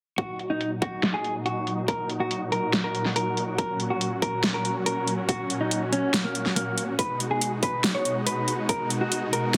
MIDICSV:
0, 0, Header, 1, 4, 480
1, 0, Start_track
1, 0, Key_signature, -6, "minor"
1, 0, Tempo, 425532
1, 204, Time_signature, 4, 2, 24, 8
1, 10795, End_track
2, 0, Start_track
2, 0, Title_t, "Clean electric guitar"
2, 0, Program_c, 0, 27
2, 203, Note_on_c, 0, 66, 87
2, 430, Note_off_c, 0, 66, 0
2, 564, Note_on_c, 0, 63, 81
2, 790, Note_off_c, 0, 63, 0
2, 922, Note_on_c, 0, 66, 78
2, 1149, Note_off_c, 0, 66, 0
2, 1284, Note_on_c, 0, 68, 79
2, 1511, Note_off_c, 0, 68, 0
2, 1642, Note_on_c, 0, 66, 81
2, 1945, Note_off_c, 0, 66, 0
2, 2123, Note_on_c, 0, 70, 90
2, 2350, Note_off_c, 0, 70, 0
2, 2484, Note_on_c, 0, 66, 81
2, 2711, Note_off_c, 0, 66, 0
2, 2842, Note_on_c, 0, 70, 80
2, 3070, Note_off_c, 0, 70, 0
2, 3204, Note_on_c, 0, 70, 81
2, 3431, Note_off_c, 0, 70, 0
2, 3563, Note_on_c, 0, 70, 83
2, 3866, Note_off_c, 0, 70, 0
2, 4042, Note_on_c, 0, 70, 92
2, 4270, Note_off_c, 0, 70, 0
2, 4403, Note_on_c, 0, 66, 80
2, 4630, Note_off_c, 0, 66, 0
2, 4762, Note_on_c, 0, 70, 79
2, 4990, Note_off_c, 0, 70, 0
2, 5123, Note_on_c, 0, 70, 81
2, 5350, Note_off_c, 0, 70, 0
2, 5483, Note_on_c, 0, 70, 86
2, 5786, Note_off_c, 0, 70, 0
2, 5963, Note_on_c, 0, 66, 86
2, 6190, Note_off_c, 0, 66, 0
2, 6324, Note_on_c, 0, 63, 82
2, 6551, Note_off_c, 0, 63, 0
2, 6684, Note_on_c, 0, 61, 83
2, 6910, Note_off_c, 0, 61, 0
2, 7043, Note_on_c, 0, 58, 80
2, 7270, Note_off_c, 0, 58, 0
2, 7403, Note_on_c, 0, 58, 83
2, 7706, Note_off_c, 0, 58, 0
2, 7883, Note_on_c, 0, 71, 88
2, 8110, Note_off_c, 0, 71, 0
2, 8243, Note_on_c, 0, 68, 80
2, 8470, Note_off_c, 0, 68, 0
2, 8603, Note_on_c, 0, 71, 82
2, 8830, Note_off_c, 0, 71, 0
2, 8964, Note_on_c, 0, 73, 81
2, 9190, Note_off_c, 0, 73, 0
2, 9323, Note_on_c, 0, 71, 82
2, 9626, Note_off_c, 0, 71, 0
2, 9803, Note_on_c, 0, 70, 89
2, 10030, Note_off_c, 0, 70, 0
2, 10164, Note_on_c, 0, 66, 81
2, 10391, Note_off_c, 0, 66, 0
2, 10522, Note_on_c, 0, 70, 83
2, 10749, Note_off_c, 0, 70, 0
2, 10795, End_track
3, 0, Start_track
3, 0, Title_t, "Supersaw synth"
3, 0, Program_c, 1, 81
3, 204, Note_on_c, 1, 46, 73
3, 204, Note_on_c, 1, 54, 67
3, 204, Note_on_c, 1, 63, 67
3, 204, Note_on_c, 1, 66, 80
3, 4005, Note_off_c, 1, 63, 0
3, 4044, Note_on_c, 1, 61, 70
3, 7839, Note_off_c, 1, 46, 0
3, 7839, Note_off_c, 1, 54, 0
3, 7839, Note_off_c, 1, 66, 0
3, 7845, Note_off_c, 1, 61, 0
3, 7883, Note_on_c, 1, 47, 75
3, 7883, Note_on_c, 1, 56, 70
3, 7883, Note_on_c, 1, 63, 68
3, 7883, Note_on_c, 1, 66, 82
3, 10795, Note_off_c, 1, 47, 0
3, 10795, Note_off_c, 1, 56, 0
3, 10795, Note_off_c, 1, 63, 0
3, 10795, Note_off_c, 1, 66, 0
3, 10795, End_track
4, 0, Start_track
4, 0, Title_t, "Drums"
4, 204, Note_on_c, 9, 36, 100
4, 204, Note_on_c, 9, 42, 70
4, 316, Note_off_c, 9, 36, 0
4, 317, Note_off_c, 9, 42, 0
4, 444, Note_on_c, 9, 42, 48
4, 557, Note_off_c, 9, 42, 0
4, 684, Note_on_c, 9, 42, 72
4, 797, Note_off_c, 9, 42, 0
4, 924, Note_on_c, 9, 36, 91
4, 924, Note_on_c, 9, 42, 47
4, 1036, Note_off_c, 9, 36, 0
4, 1037, Note_off_c, 9, 42, 0
4, 1164, Note_on_c, 9, 38, 103
4, 1164, Note_on_c, 9, 42, 72
4, 1277, Note_off_c, 9, 38, 0
4, 1277, Note_off_c, 9, 42, 0
4, 1403, Note_on_c, 9, 42, 46
4, 1516, Note_off_c, 9, 42, 0
4, 1643, Note_on_c, 9, 42, 73
4, 1756, Note_off_c, 9, 42, 0
4, 1884, Note_on_c, 9, 42, 49
4, 1996, Note_off_c, 9, 42, 0
4, 2123, Note_on_c, 9, 36, 106
4, 2123, Note_on_c, 9, 42, 68
4, 2236, Note_off_c, 9, 36, 0
4, 2236, Note_off_c, 9, 42, 0
4, 2363, Note_on_c, 9, 42, 45
4, 2476, Note_off_c, 9, 42, 0
4, 2603, Note_on_c, 9, 42, 69
4, 2716, Note_off_c, 9, 42, 0
4, 2843, Note_on_c, 9, 42, 46
4, 2956, Note_off_c, 9, 42, 0
4, 3083, Note_on_c, 9, 38, 110
4, 3083, Note_on_c, 9, 42, 71
4, 3196, Note_off_c, 9, 38, 0
4, 3196, Note_off_c, 9, 42, 0
4, 3323, Note_on_c, 9, 42, 46
4, 3436, Note_off_c, 9, 42, 0
4, 3445, Note_on_c, 9, 38, 33
4, 3558, Note_off_c, 9, 38, 0
4, 3564, Note_on_c, 9, 42, 72
4, 3676, Note_off_c, 9, 42, 0
4, 3804, Note_on_c, 9, 42, 48
4, 3917, Note_off_c, 9, 42, 0
4, 4043, Note_on_c, 9, 36, 109
4, 4043, Note_on_c, 9, 42, 65
4, 4156, Note_off_c, 9, 36, 0
4, 4156, Note_off_c, 9, 42, 0
4, 4283, Note_on_c, 9, 42, 45
4, 4396, Note_off_c, 9, 42, 0
4, 4524, Note_on_c, 9, 42, 68
4, 4637, Note_off_c, 9, 42, 0
4, 4763, Note_on_c, 9, 36, 98
4, 4764, Note_on_c, 9, 42, 47
4, 4876, Note_off_c, 9, 36, 0
4, 4877, Note_off_c, 9, 42, 0
4, 5003, Note_on_c, 9, 38, 109
4, 5003, Note_on_c, 9, 42, 69
4, 5116, Note_off_c, 9, 38, 0
4, 5116, Note_off_c, 9, 42, 0
4, 5244, Note_on_c, 9, 42, 44
4, 5357, Note_off_c, 9, 42, 0
4, 5484, Note_on_c, 9, 42, 70
4, 5597, Note_off_c, 9, 42, 0
4, 5724, Note_on_c, 9, 42, 46
4, 5837, Note_off_c, 9, 42, 0
4, 5963, Note_on_c, 9, 36, 108
4, 5964, Note_on_c, 9, 42, 65
4, 6076, Note_off_c, 9, 36, 0
4, 6077, Note_off_c, 9, 42, 0
4, 6204, Note_on_c, 9, 42, 43
4, 6317, Note_off_c, 9, 42, 0
4, 6444, Note_on_c, 9, 42, 67
4, 6557, Note_off_c, 9, 42, 0
4, 6684, Note_on_c, 9, 42, 44
4, 6797, Note_off_c, 9, 42, 0
4, 6924, Note_on_c, 9, 38, 111
4, 6924, Note_on_c, 9, 42, 69
4, 7037, Note_off_c, 9, 38, 0
4, 7037, Note_off_c, 9, 42, 0
4, 7163, Note_on_c, 9, 42, 44
4, 7276, Note_off_c, 9, 42, 0
4, 7285, Note_on_c, 9, 38, 34
4, 7397, Note_off_c, 9, 38, 0
4, 7404, Note_on_c, 9, 42, 66
4, 7516, Note_off_c, 9, 42, 0
4, 7643, Note_on_c, 9, 42, 46
4, 7756, Note_off_c, 9, 42, 0
4, 7883, Note_on_c, 9, 36, 102
4, 7883, Note_on_c, 9, 42, 67
4, 7995, Note_off_c, 9, 42, 0
4, 7996, Note_off_c, 9, 36, 0
4, 8123, Note_on_c, 9, 42, 45
4, 8236, Note_off_c, 9, 42, 0
4, 8364, Note_on_c, 9, 42, 67
4, 8476, Note_off_c, 9, 42, 0
4, 8603, Note_on_c, 9, 36, 97
4, 8603, Note_on_c, 9, 42, 45
4, 8715, Note_off_c, 9, 42, 0
4, 8716, Note_off_c, 9, 36, 0
4, 8843, Note_on_c, 9, 38, 104
4, 8843, Note_on_c, 9, 42, 67
4, 8956, Note_off_c, 9, 38, 0
4, 8956, Note_off_c, 9, 42, 0
4, 9084, Note_on_c, 9, 42, 44
4, 9196, Note_off_c, 9, 42, 0
4, 9323, Note_on_c, 9, 42, 69
4, 9436, Note_off_c, 9, 42, 0
4, 9563, Note_on_c, 9, 42, 45
4, 9676, Note_off_c, 9, 42, 0
4, 9803, Note_on_c, 9, 36, 99
4, 9803, Note_on_c, 9, 42, 67
4, 9916, Note_off_c, 9, 36, 0
4, 9916, Note_off_c, 9, 42, 0
4, 10043, Note_on_c, 9, 42, 46
4, 10156, Note_off_c, 9, 42, 0
4, 10283, Note_on_c, 9, 42, 69
4, 10396, Note_off_c, 9, 42, 0
4, 10524, Note_on_c, 9, 42, 46
4, 10636, Note_off_c, 9, 42, 0
4, 10795, End_track
0, 0, End_of_file